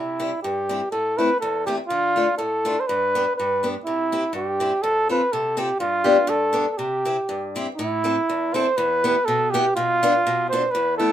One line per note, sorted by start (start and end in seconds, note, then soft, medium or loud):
0.00 0.32 C3 soft
0.00 0.40 E4 medium
0.20 0.30 G3 soft
0.20 0.30 C4 soft
0.20 0.30 E4 medium
0.43 0.81 G2 medium
0.43 0.89 G4 medium
0.69 0.80 G3 medium
0.69 0.80 C4 soft
0.69 0.80 E4 soft
0.92 1.29 A2 soft
0.92 1.19 A4 medium
1.17 1.29 A3 soft
1.17 1.29 C4 soft
1.17 1.29 E4 medium
1.17 1.40 B4 medium
1.40 1.78 E2 medium
1.40 1.64 A4 medium
1.66 1.77 A3 soft
1.66 1.77 C4 soft
1.66 1.77 E4 medium
1.66 1.76 G4 medium
1.88 2.26 D3 medium
1.88 2.34 F4 loud
2.16 2.26 A3 soft
2.16 2.26 D4 soft
2.16 2.26 F4 medium
2.38 2.75 A2 medium
2.38 2.81 A4 medium
2.65 2.75 A3 medium
2.65 2.75 D4 medium
2.65 2.75 F4 medium
2.80 2.89 C5 medium
2.87 3.25 G2 medium
2.87 3.35 B4 loud
3.15 3.24 B3 medium
3.15 3.25 D4 soft
3.15 3.24 G4 soft
3.36 3.76 G2 medium
3.36 3.71 B4 medium
3.63 3.74 B3 soft
3.63 3.73 D4 soft
3.63 3.74 G4 soft
3.85 4.24 C3 medium
3.85 4.32 E4 medium
4.12 4.23 C4 soft
4.12 4.23 E4 soft
4.12 4.23 G4 medium
4.33 4.71 G2 medium
4.33 4.84 G4 medium
4.60 4.71 C4 soft
4.60 4.71 E4 soft
4.60 4.72 G4 medium
4.82 5.21 F2 medium
4.82 5.09 A4 medium
5.09 5.20 C4 soft
5.09 5.20 F4 soft
5.09 5.20 A4 medium
5.09 5.34 B4 medium
5.32 5.70 C3 medium
5.32 5.60 A4 medium
5.57 5.68 C4 medium
5.57 5.68 F4 soft
5.57 5.79 G4 medium
5.57 5.69 A4 medium
5.80 6.17 G2 medium
5.80 6.31 F4 medium
6.04 6.16 B3 medium
6.04 6.16 D4 soft
6.04 6.16 G4 medium
6.27 6.65 G2 medium
6.27 6.70 A4 medium
6.53 6.65 B3 medium
6.53 6.65 D4 soft
6.53 6.65 G4 medium
6.70 6.79 A4 medium
6.77 7.16 C3 medium
6.77 7.54 G4 medium
7.05 7.16 C4 soft
7.05 7.16 E4 medium
7.05 7.16 G4 soft
7.29 7.66 G2 medium
7.56 7.66 C4 medium
7.56 7.66 E4 medium
7.56 7.66 G4 medium
7.76 8.16 A2 medium
7.76 8.56 E4 medium
8.04 8.15 C4 medium
8.04 8.15 E4 medium
8.04 8.15 A4 soft
8.30 8.67 E2 medium
8.54 8.65 C4 medium
8.54 8.66 E4 medium
8.54 8.66 A4 medium
8.54 8.79 C5 medium
8.77 9.15 E2 medium
8.77 9.27 B4 medium
9.04 9.15 B3 medium
9.04 9.15 E4 soft
9.04 9.15 G4 medium
9.25 9.64 B2 medium
9.25 9.52 A4 medium
9.50 9.64 B3 medium
9.50 9.75 G4 medium
9.55 9.64 E4 soft
9.55 9.64 G4 medium
9.76 10.13 B2 medium
9.76 10.46 F4 loud
10.03 10.13 B3 medium
10.03 10.12 D4 medium
10.03 10.13 F4 medium
10.27 10.62 B2 medium
10.50 10.62 B3 medium
10.50 10.62 D4 soft
10.50 10.62 F4 medium
10.50 10.72 C5 medium
10.71 11.11 E2 medium
10.71 10.96 B4 medium
10.97 11.10 A3 soft
10.97 11.10 B3 soft
10.97 11.10 E4 medium
10.97 11.12 A4 medium